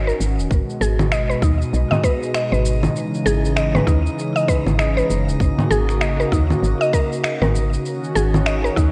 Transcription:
0.00 0.13 G#1 loud
0.00 0.48 D#3 medium
0.00 0.48 C#4 medium
0.00 2.92 F#4 medium
0.07 0.15 A#4 medium
0.07 shaker soft
0.20 0.40 G#1 medium
0.20 shaker medium
0.38 0.46 D#1 medium
0.38 shaker soft
0.50 0.62 G#1 loud
0.50 2.93 B2 medium
0.50 5.36 G#3 medium
0.50 8.92 D#4 medium
0.50 8.92 D#5 medium
0.50 kick loud
0.50 shaker soft
0.70 shaker soft
0.81 1.35 G#1 medium
0.81 1.11 G#4 loud
0.81 shaker medium
1.00 finger snap soft
1.00 low conga medium
1.00 shaker soft
1.12 1.28 D#5 medium
1.12 finger snap medium
1.12 shaker soft
1.30 1.41 B4 medium
1.30 shaker soft
1.42 1.64 D#2 medium
1.42 1.89 D#4 medium
1.42 kick medium
1.42 shaker medium
1.62 shaker soft
1.73 1.85 B1 medium
1.73 shaker soft
1.91 2.02 D#5 loud
1.91 low conga medium
1.91 shaker soft
2.04 2.33 B4 loud
2.04 kick loud
2.04 shaker medium
2.23 shaker soft
2.35 2.51 D#5 medium
2.35 finger snap medium
2.35 shaker soft
2.52 2.88 G#1 loud
2.52 2.59 B4 medium
2.52 shaker soft
2.66 shaker medium
2.83 low conga medium
2.83 shaker soft
2.95 7.81 C#3 medium
2.95 5.38 E3 medium
2.95 shaker soft
3.15 shaker soft
3.26 3.80 G#1 medium
3.26 3.55 G#4 loud
3.26 shaker medium
3.45 shaker soft
3.56 3.73 D#5 medium
3.56 finger snap medium
3.56 shaker soft
3.75 3.86 B4 medium
3.75 low conga medium
3.75 shaker soft
3.87 4.09 D#2 medium
3.87 4.34 D#4 medium
3.87 kick loud
3.87 shaker medium
4.06 shaker soft
4.19 shaker soft
4.36 4.47 D#5 loud
4.36 shaker soft
4.48 4.78 B4 medium
4.48 kick medium
4.48 shaker medium
4.66 5.02 G#1 medium
4.66 low conga medium
4.66 shaker soft
4.79 4.95 D#5 medium
4.79 finger snap medium
4.79 shaker soft
4.97 5.04 B4 medium
4.97 shaker soft
5.10 5.29 F#1 medium
5.10 shaker medium
5.28 5.36 D#1 medium
5.28 shaker soft
5.40 5.52 G#1 loud
5.40 7.83 A#3 medium
5.40 7.83 F#4 medium
5.40 kick loud
5.40 shaker soft
5.59 low conga medium
5.59 shaker soft
5.70 6.25 G#1 medium
5.70 6.00 G#4 loud
5.70 shaker medium
5.89 finger snap soft
5.89 shaker soft
6.01 6.18 D#5 medium
6.01 finger snap medium
6.01 shaker soft
6.20 6.31 A#4 medium
6.20 shaker soft
6.32 6.53 D#2 medium
6.32 6.79 D#4 medium
6.32 kick medium
6.32 shaker medium
6.50 low conga medium
6.50 shaker soft
6.62 6.74 G#1 medium
6.62 shaker soft
6.81 6.92 D#5 loud
6.81 shaker soft
6.93 7.23 A#4 loud
6.93 kick loud
6.93 shaker medium
7.12 shaker soft
7.23 7.40 D#5 medium
7.23 finger snap loud
7.23 shaker soft
7.41 7.78 G#1 loud
7.41 7.49 A#4 medium
7.41 low conga medium
7.41 shaker soft
7.55 shaker medium
7.73 shaker soft
7.85 8.92 D#3 medium
7.85 8.92 C#4 medium
7.85 8.92 F#4 medium
7.85 shaker soft
8.04 shaker soft
8.15 8.70 G#1 medium
8.15 8.45 G#4 medium
8.15 shaker medium
8.34 low conga medium
8.34 shaker soft
8.46 8.62 D#5 medium
8.46 finger snap loud
8.46 shaker soft
8.64 8.76 A#4 medium
8.64 shaker soft
8.76 8.92 D#2 medium
8.76 8.92 D#4 medium
8.76 kick medium
8.76 shaker medium

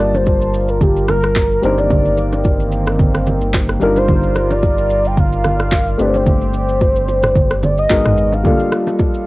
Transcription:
0.00 1.59 G1 medium
0.00 1.58 G3 medium
0.00 1.61 G3 medium
0.00 1.59 A#3 medium
0.00 1.59 D4 medium
0.00 1.60 F4 medium
0.00 1.61 F4 medium
0.00 1.61 A#4 medium
0.00 0.17 D5 loud
0.00 1.60 A5 medium
0.00 1.61 A5 medium
0.14 0.71 C5 loud
0.14 low bongo medium
0.14 shaker soft
0.26 kick loud
0.26 high bongo medium
0.26 shaker medium
0.41 shaker soft
0.54 shaker loud
0.68 0.83 A#4 medium
0.68 shaker soft
0.81 1.08 G4 loud
0.81 kick loud
0.81 low conga medium
0.81 shaker medium
0.96 shaker medium
1.08 1.65 A#4 loud
1.08 cross-stick medium
1.08 low bongo medium
1.08 low conga medium
1.08 shaker medium
1.23 cross-stick medium
1.23 shaker soft
1.36 kick loud
1.36 clap loud
1.36 high bongo medium
1.36 shaker medium
1.51 shaker soft
1.62 3.77 G1 medium
1.62 3.79 D#3 medium
1.62 3.76 G3 medium
1.62 3.79 A#3 medium
1.62 3.77 C4 medium
1.62 3.79 C4 medium
1.62 3.77 D4 medium
1.62 3.78 D#4 medium
1.62 3.78 A#4 medium
1.62 1.80 C5 medium
1.62 shaker medium
1.78 2.87 D5 loud
1.78 low bongo medium
1.78 shaker soft
1.90 kick loud
1.90 low conga medium
1.90 shaker medium
2.05 shaker soft
2.17 low bongo soft
2.17 shaker medium
2.33 low bongo medium
2.33 shaker medium
2.44 kick loud
2.44 high bongo medium
2.44 shaker medium
2.60 shaker soft
2.72 shaker loud
2.86 cross-stick medium
2.86 shaker soft
2.99 kick loud
2.99 low conga medium
2.99 shaker medium
3.15 cross-stick medium
3.15 shaker medium
3.27 low bongo medium
3.27 low conga medium
3.27 shaker loud
3.41 shaker soft
3.54 kick loud
3.54 clap medium
3.54 high bongo medium
3.54 shaker medium
3.69 cross-stick medium
3.69 shaker soft
3.80 5.95 G1 medium
3.80 5.95 G3 medium
3.80 5.97 G3 medium
3.80 5.95 D4 medium
3.80 5.95 D#4 medium
3.80 5.97 F4 medium
3.80 5.96 F4 medium
3.80 5.97 A#4 medium
3.80 3.96 A#4 medium
3.80 5.96 A#4 medium
3.80 7.86 D5 medium
3.80 shaker loud
3.96 4.48 C5 loud
3.96 low bongo medium
3.96 shaker soft
4.08 kick loud
4.08 low conga medium
4.08 shaker medium
4.23 shaker soft
4.35 cross-stick medium
4.35 low bongo soft
4.35 shaker medium
4.51 5.08 D5 loud
4.51 low bongo medium
4.51 shaker medium
4.63 kick medium
4.63 high bongo medium
4.63 shaker medium
4.78 shaker medium
4.90 shaker loud
5.05 5.20 G5 loud
5.05 shaker soft
5.17 6.03 F5 loud
5.17 kick loud
5.17 low conga medium
5.17 shaker medium
5.33 shaker medium
5.44 cross-stick medium
5.44 low bongo medium
5.44 low conga medium
5.44 shaker medium
5.59 cross-stick medium
5.59 shaker soft
5.72 kick medium
5.72 clap loud
5.72 high bongo medium
5.72 shaker medium
5.87 shaker soft
5.98 7.86 G1 medium
5.98 7.86 A3 medium
5.98 7.86 C4 medium
5.98 7.88 C4 medium
5.98 7.86 D4 medium
5.98 7.88 G4 medium
5.98 7.87 G4 medium
5.98 6.07 B4 medium
5.98 6.15 D5 loud
5.98 shaker loud
6.08 7.91 C5 medium
6.14 7.66 C5 loud
6.14 low bongo medium
6.14 shaker soft
6.26 kick loud
6.26 low conga medium
6.26 shaker medium
6.41 shaker soft
6.54 low bongo soft
6.54 shaker medium
6.69 shaker medium
6.81 kick loud
6.81 high bongo medium
6.81 shaker medium
6.96 shaker medium
7.08 high bongo medium
7.08 shaker loud
7.23 cross-stick loud
7.23 mid tom medium
7.23 high bongo medium
7.23 shaker soft
7.36 kick loud
7.36 low conga medium
7.36 shaker medium
7.51 cross-stick medium
7.51 shaker medium
7.63 7.79 D5 medium
7.63 low bongo medium
7.63 low conga medium
7.63 shaker medium
7.78 8.35 D#5 loud
7.78 shaker soft
7.89 8.44 G#1 medium
7.89 8.44 G#3 medium
7.89 8.45 B3 medium
7.89 8.44 B3 medium
7.89 8.45 D#4 medium
7.89 8.44 F#4 medium
7.89 8.45 F#4 medium
7.89 8.45 A#4 medium
7.89 kick loud
7.89 clap loud
7.89 high bongo medium
7.89 shaker medium
8.06 cross-stick medium
8.06 mid tom medium
8.06 shaker soft
8.17 shaker medium
8.32 8.45 F5 medium
8.32 low bongo medium
8.32 shaker soft
8.43 9.27 G3 medium
8.43 9.27 A#3 medium
8.43 9.27 D4 medium
8.43 9.27 F4 medium
8.43 9.27 A4 medium
8.43 8.96 F5 medium
8.43 kick loud
8.43 low conga medium
8.43 shaker medium
8.60 shaker soft
8.72 cross-stick medium
8.72 low bongo soft
8.72 shaker medium
8.87 low bongo medium
8.87 shaker medium
8.99 kick loud
8.99 high bongo medium
8.99 shaker medium
9.14 shaker soft

